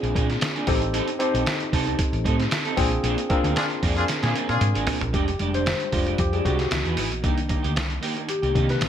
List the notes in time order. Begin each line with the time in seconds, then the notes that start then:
Already playing: C4 D4 F4 G#4
0.02 A#1 A#3 D4 G#4, closed hi-hat
0.15 A#2 A#3 D4 G#4, kick, closed hi-hat
0.29 muted clean electric guitar stroke, snare, closed hi-hat
0.41 muted clean electric guitar stroke, snare, closed hi-hat
0.55 A#3 D4 G#4, closed hi-hat
0.67 A1 C4 D#4 G4 A4, kick, open hi-hat
0.82 muted clean electric guitar stroke, closed hi-hat
0.93 C4 D#4 A4, closed hi-hat
1.08 muted clean electric guitar stroke, closed hi-hat
1.19 C4 D#4 G4 A4 C5, closed hi-hat
1.34 A#1 C4 D#4 A4, closed hi-hat
1.46 muted clean electric guitar stroke, snare, closed hi-hat
1.60 muted clean electric guitar stroke, closed hi-hat
1.72 C2 C4 D#4 A4, kick, open hi-hat
1.86 C4 D#4 A4, closed hi-hat
1.98 muted clean electric guitar stroke, kick, closed hi-hat
2.13 A1, muted clean electric guitar stroke, closed hi-hat
2.24 A2 C4 D#4 A4, kick, closed hi-hat
2.38 muted clean electric guitar stroke, snare, closed hi-hat
2.51 muted clean electric guitar stroke, snare, closed hi-hat
2.65 C4 D#4 A4, closed hi-hat
2.77 A#1 A#3 C4 D4 F4 G#4, kick, open hi-hat
2.91 muted clean electric guitar stroke, closed hi-hat
3.03 A#1 A#3 D4 G#4, closed hi-hat
3.17 muted clean electric guitar stroke, closed hi-hat
3.29 A#3 C4 D4 F4 G#4 A#4, kick, closed hi-hat
3.44 D2 A#3 D4 G#4, closed hi-hat
3.56 D4 F4 G#4, muted clean electric guitar stroke, snare, closed hi-hat
3.70 muted clean electric guitar stroke, closed hi-hat
3.82 F2 A#3 D4 G#4, kick, open hi-hat
3.97 A#3 D4 F4 G#4, closed hi-hat
4.08 muted clean electric guitar stroke, snare, closed hi-hat
4.23 A#2 A#3 D4 F4 G#4, snare, closed hi-hat
4.35 A#3 D4 G#4, closed hi-hat
4.49 A#2 D4 F4 G#4, muted clean electric guitar stroke, closed hi-hat, high tom
4.61 G#2, muted clean electric guitar stroke, closed hi-hat, mid tom
4.75 G#1 A#3 D4 G#4, closed hi-hat
4.86 A#3 D4 G#4, floor tom, open hi-hat
5.01 A#1, muted clean electric guitar stroke, closed hi-hat, floor tom
5.13 F1 G#3 D4 G4, kick, closed hi-hat
5.27 muted clean electric guitar stroke, closed hi-hat
5.39 F1 G3 G#3 D4 G4, closed hi-hat
5.53 G#3 D4 G4 C5, closed hi-hat
5.66 muted clean electric guitar stroke, snare, closed hi-hat
5.80 muted clean electric guitar stroke, closed hi-hat
5.91 F1 G#3 D4 F4 G4, kick, open hi-hat
6.06 G#3 D4 G4, closed hi-hat
6.18 F2 G4, muted clean electric guitar stroke, kick, closed hi-hat
6.33 G#3 D4 G4 G#4, closed hi-hat
6.44 C2 G#3 D4 F#4 G4, kick, closed hi-hat
6.58 muted clean electric guitar stroke, snare, closed hi-hat
6.71 C#2 E3 B3 D#4, muted clean electric guitar stroke, snare, closed hi-hat
6.84 E2 B3 E4 G#4, closed hi-hat
6.96 G#1 B3 E4 G#4, open hi-hat
7.11 A#1, muted clean electric guitar stroke, closed hi-hat
7.22 C2 D#3 A#3 D4 D#4 G4, kick, closed hi-hat
7.37 muted clean electric guitar stroke, closed hi-hat
7.49 A#3 D#4 G4, kick, closed hi-hat
7.63 D2 A#3 D#4 G4, closed hi-hat
7.75 C2, muted clean electric guitar stroke, snare, closed hi-hat
7.89 muted clean electric guitar stroke, closed hi-hat
8.01 A#3 D#4 G4, open hi-hat
8.16 A#3 D#4 G4, closed hi-hat
8.28 G4, muted clean electric guitar stroke, closed hi-hat
8.42 C2 A#3 D#4 G4, closed hi-hat
8.54 C3 D#3 A#3 D4 D#4 G4, kick, closed hi-hat
8.69 B4, muted clean electric guitar stroke, snare, closed hi-hat
8.81 A1 G#3 B3 C#4, muted clean electric guitar stroke, snare, closed hi-hat